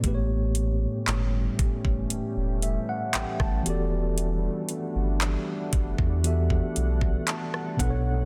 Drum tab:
HH |x-x-x-x-x-x-x-x-|x-x-x-x-x-x-x-x-|
CP |----x-------x---|----x-------x---|
SD |-------------r--|-------------r--|
BD |o-----oo-----o--|------oo-o-o--o-|